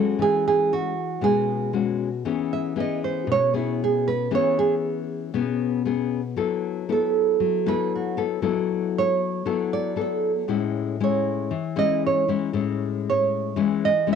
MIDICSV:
0, 0, Header, 1, 3, 480
1, 0, Start_track
1, 0, Key_signature, 4, "major"
1, 0, Tempo, 514139
1, 179, Time_signature, 4, 2, 24, 8
1, 13212, End_track
2, 0, Start_track
2, 0, Title_t, "Nylon-string guitar"
2, 0, Program_c, 0, 24
2, 206, Note_on_c, 0, 68, 97
2, 433, Note_off_c, 0, 68, 0
2, 444, Note_on_c, 0, 68, 86
2, 679, Note_off_c, 0, 68, 0
2, 680, Note_on_c, 0, 66, 90
2, 1155, Note_on_c, 0, 68, 86
2, 1164, Note_off_c, 0, 66, 0
2, 1595, Note_off_c, 0, 68, 0
2, 2361, Note_on_c, 0, 76, 70
2, 2584, Note_off_c, 0, 76, 0
2, 2616, Note_on_c, 0, 75, 69
2, 2832, Note_off_c, 0, 75, 0
2, 2839, Note_on_c, 0, 72, 67
2, 3064, Note_off_c, 0, 72, 0
2, 3095, Note_on_c, 0, 73, 88
2, 3312, Note_off_c, 0, 73, 0
2, 3328, Note_on_c, 0, 64, 41
2, 3549, Note_off_c, 0, 64, 0
2, 3583, Note_on_c, 0, 68, 66
2, 3796, Note_off_c, 0, 68, 0
2, 3806, Note_on_c, 0, 71, 73
2, 4028, Note_off_c, 0, 71, 0
2, 4059, Note_on_c, 0, 73, 86
2, 4275, Note_off_c, 0, 73, 0
2, 4283, Note_on_c, 0, 68, 82
2, 4421, Note_off_c, 0, 68, 0
2, 6464, Note_on_c, 0, 69, 61
2, 7128, Note_off_c, 0, 69, 0
2, 7172, Note_on_c, 0, 71, 88
2, 7392, Note_off_c, 0, 71, 0
2, 7426, Note_on_c, 0, 66, 44
2, 7639, Note_off_c, 0, 66, 0
2, 8387, Note_on_c, 0, 73, 85
2, 9049, Note_off_c, 0, 73, 0
2, 9085, Note_on_c, 0, 74, 79
2, 9308, Note_off_c, 0, 74, 0
2, 9347, Note_on_c, 0, 69, 45
2, 9559, Note_off_c, 0, 69, 0
2, 10303, Note_on_c, 0, 73, 71
2, 10965, Note_off_c, 0, 73, 0
2, 11004, Note_on_c, 0, 75, 88
2, 11226, Note_off_c, 0, 75, 0
2, 11264, Note_on_c, 0, 73, 70
2, 11476, Note_off_c, 0, 73, 0
2, 12226, Note_on_c, 0, 73, 72
2, 12886, Note_off_c, 0, 73, 0
2, 12930, Note_on_c, 0, 75, 86
2, 13149, Note_off_c, 0, 75, 0
2, 13212, End_track
3, 0, Start_track
3, 0, Title_t, "Nylon-string guitar"
3, 0, Program_c, 1, 24
3, 0, Note_on_c, 1, 54, 63
3, 0, Note_on_c, 1, 56, 51
3, 0, Note_on_c, 1, 61, 55
3, 0, Note_on_c, 1, 66, 61
3, 157, Note_off_c, 1, 54, 0
3, 176, Note_on_c, 1, 52, 71
3, 862, Note_off_c, 1, 56, 0
3, 863, Note_off_c, 1, 61, 0
3, 864, Note_off_c, 1, 66, 0
3, 1115, Note_off_c, 1, 52, 0
3, 1132, Note_on_c, 1, 47, 70
3, 1139, Note_on_c, 1, 56, 56
3, 1140, Note_on_c, 1, 61, 49
3, 1144, Note_on_c, 1, 66, 63
3, 1581, Note_off_c, 1, 56, 0
3, 1583, Note_off_c, 1, 61, 0
3, 1583, Note_off_c, 1, 66, 0
3, 1615, Note_on_c, 1, 56, 51
3, 1620, Note_on_c, 1, 61, 48
3, 1626, Note_on_c, 1, 66, 53
3, 1941, Note_off_c, 1, 56, 0
3, 1942, Note_off_c, 1, 61, 0
3, 1946, Note_off_c, 1, 66, 0
3, 2074, Note_off_c, 1, 47, 0
3, 2100, Note_on_c, 1, 52, 62
3, 2103, Note_on_c, 1, 59, 56
3, 2105, Note_on_c, 1, 61, 54
3, 2110, Note_on_c, 1, 68, 55
3, 2543, Note_off_c, 1, 59, 0
3, 2546, Note_off_c, 1, 61, 0
3, 2546, Note_off_c, 1, 68, 0
3, 2576, Note_on_c, 1, 59, 55
3, 2581, Note_on_c, 1, 61, 47
3, 2585, Note_on_c, 1, 68, 51
3, 3038, Note_off_c, 1, 52, 0
3, 3052, Note_on_c, 1, 47, 74
3, 3262, Note_off_c, 1, 59, 0
3, 3263, Note_off_c, 1, 61, 0
3, 3266, Note_off_c, 1, 68, 0
3, 3301, Note_on_c, 1, 59, 57
3, 3306, Note_on_c, 1, 61, 55
3, 3308, Note_on_c, 1, 68, 64
3, 3985, Note_off_c, 1, 59, 0
3, 3986, Note_off_c, 1, 61, 0
3, 3988, Note_off_c, 1, 68, 0
3, 3994, Note_off_c, 1, 47, 0
3, 4022, Note_on_c, 1, 52, 73
3, 4028, Note_on_c, 1, 59, 52
3, 4028, Note_on_c, 1, 61, 55
3, 4033, Note_on_c, 1, 68, 59
3, 4947, Note_off_c, 1, 59, 0
3, 4949, Note_off_c, 1, 61, 0
3, 4950, Note_off_c, 1, 68, 0
3, 4960, Note_off_c, 1, 52, 0
3, 4982, Note_on_c, 1, 47, 74
3, 4986, Note_on_c, 1, 59, 57
3, 4986, Note_on_c, 1, 61, 49
3, 4992, Note_on_c, 1, 68, 61
3, 5426, Note_off_c, 1, 59, 0
3, 5428, Note_off_c, 1, 61, 0
3, 5429, Note_off_c, 1, 68, 0
3, 5465, Note_on_c, 1, 59, 45
3, 5469, Note_on_c, 1, 61, 52
3, 5475, Note_on_c, 1, 68, 61
3, 5788, Note_off_c, 1, 59, 0
3, 5790, Note_off_c, 1, 61, 0
3, 5793, Note_off_c, 1, 68, 0
3, 5921, Note_off_c, 1, 47, 0
3, 5944, Note_on_c, 1, 54, 63
3, 5950, Note_on_c, 1, 59, 53
3, 5951, Note_on_c, 1, 64, 54
3, 5953, Note_on_c, 1, 69, 54
3, 6388, Note_off_c, 1, 59, 0
3, 6390, Note_off_c, 1, 64, 0
3, 6390, Note_off_c, 1, 69, 0
3, 6432, Note_on_c, 1, 59, 53
3, 6436, Note_on_c, 1, 64, 56
3, 6440, Note_on_c, 1, 69, 61
3, 6882, Note_off_c, 1, 54, 0
3, 6910, Note_on_c, 1, 54, 61
3, 7111, Note_off_c, 1, 59, 0
3, 7112, Note_off_c, 1, 64, 0
3, 7114, Note_off_c, 1, 69, 0
3, 7152, Note_on_c, 1, 59, 59
3, 7157, Note_on_c, 1, 64, 64
3, 7157, Note_on_c, 1, 69, 74
3, 7591, Note_off_c, 1, 59, 0
3, 7592, Note_off_c, 1, 64, 0
3, 7593, Note_off_c, 1, 69, 0
3, 7626, Note_on_c, 1, 59, 59
3, 7628, Note_on_c, 1, 64, 58
3, 7633, Note_on_c, 1, 69, 67
3, 7828, Note_off_c, 1, 59, 0
3, 7828, Note_off_c, 1, 64, 0
3, 7831, Note_off_c, 1, 69, 0
3, 7844, Note_off_c, 1, 54, 0
3, 7859, Note_on_c, 1, 54, 73
3, 7862, Note_on_c, 1, 59, 52
3, 7867, Note_on_c, 1, 64, 57
3, 7870, Note_on_c, 1, 69, 57
3, 8508, Note_off_c, 1, 59, 0
3, 8511, Note_off_c, 1, 64, 0
3, 8512, Note_off_c, 1, 69, 0
3, 8799, Note_off_c, 1, 54, 0
3, 8827, Note_on_c, 1, 54, 69
3, 8829, Note_on_c, 1, 59, 56
3, 8830, Note_on_c, 1, 64, 51
3, 8836, Note_on_c, 1, 69, 65
3, 9268, Note_off_c, 1, 59, 0
3, 9268, Note_off_c, 1, 64, 0
3, 9272, Note_off_c, 1, 69, 0
3, 9299, Note_on_c, 1, 59, 50
3, 9305, Note_on_c, 1, 64, 51
3, 9307, Note_on_c, 1, 69, 65
3, 9624, Note_off_c, 1, 59, 0
3, 9628, Note_off_c, 1, 64, 0
3, 9628, Note_off_c, 1, 69, 0
3, 9762, Note_off_c, 1, 54, 0
3, 9782, Note_on_c, 1, 45, 63
3, 9786, Note_on_c, 1, 56, 54
3, 9789, Note_on_c, 1, 61, 61
3, 9795, Note_on_c, 1, 64, 61
3, 10225, Note_off_c, 1, 56, 0
3, 10228, Note_off_c, 1, 61, 0
3, 10230, Note_off_c, 1, 64, 0
3, 10273, Note_on_c, 1, 56, 49
3, 10274, Note_on_c, 1, 61, 57
3, 10280, Note_on_c, 1, 64, 65
3, 10719, Note_off_c, 1, 45, 0
3, 10744, Note_on_c, 1, 52, 76
3, 10745, Note_off_c, 1, 56, 0
3, 10745, Note_off_c, 1, 61, 0
3, 10749, Note_off_c, 1, 64, 0
3, 10978, Note_on_c, 1, 56, 61
3, 10983, Note_on_c, 1, 61, 67
3, 10986, Note_on_c, 1, 64, 74
3, 11422, Note_off_c, 1, 56, 0
3, 11424, Note_off_c, 1, 61, 0
3, 11426, Note_off_c, 1, 64, 0
3, 11467, Note_on_c, 1, 56, 54
3, 11473, Note_on_c, 1, 61, 59
3, 11476, Note_on_c, 1, 64, 62
3, 11666, Note_off_c, 1, 56, 0
3, 11669, Note_off_c, 1, 64, 0
3, 11670, Note_off_c, 1, 61, 0
3, 11679, Note_off_c, 1, 52, 0
3, 11701, Note_on_c, 1, 45, 61
3, 11703, Note_on_c, 1, 56, 53
3, 11709, Note_on_c, 1, 61, 56
3, 11711, Note_on_c, 1, 64, 57
3, 12623, Note_off_c, 1, 56, 0
3, 12625, Note_off_c, 1, 61, 0
3, 12628, Note_off_c, 1, 64, 0
3, 12638, Note_off_c, 1, 45, 0
3, 12659, Note_on_c, 1, 52, 72
3, 12665, Note_on_c, 1, 56, 60
3, 12669, Note_on_c, 1, 61, 56
3, 12669, Note_on_c, 1, 64, 64
3, 12972, Note_off_c, 1, 56, 0
3, 12972, Note_off_c, 1, 61, 0
3, 12975, Note_off_c, 1, 64, 0
3, 13135, Note_on_c, 1, 56, 61
3, 13142, Note_on_c, 1, 61, 54
3, 13146, Note_on_c, 1, 64, 61
3, 13212, Note_off_c, 1, 52, 0
3, 13212, Note_off_c, 1, 56, 0
3, 13212, Note_off_c, 1, 61, 0
3, 13212, Note_off_c, 1, 64, 0
3, 13212, End_track
0, 0, End_of_file